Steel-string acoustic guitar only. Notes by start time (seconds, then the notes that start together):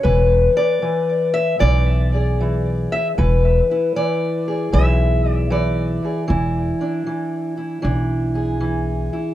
0.03 E3 B4
0.57 D5
0.82 E3
1.34 E5
1.59 E3 D5
2.14 G#4
2.41 E3
2.92 E5
3.18 E3 B4
3.71 E4
3.96 E3 D5
4.48 G#4
4.72 E3 E5
5.31 D5
5.50 E3 D5
6.05 G#4
6.28 E3 E4
6.81 D4
7.07 E3
7.57 E4
7.82 E3 D4
8.35 G#4
8.60 E3
9.13 E4